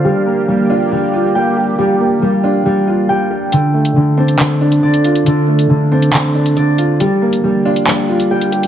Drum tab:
HH |----------------|----------------|x--x---x---x-xxx|x--x---x---xx-x-|
CP |----------------|----------------|--------x-------|--------x-------|

HH |x--x---x---x-xxx|
CP |--------x-------|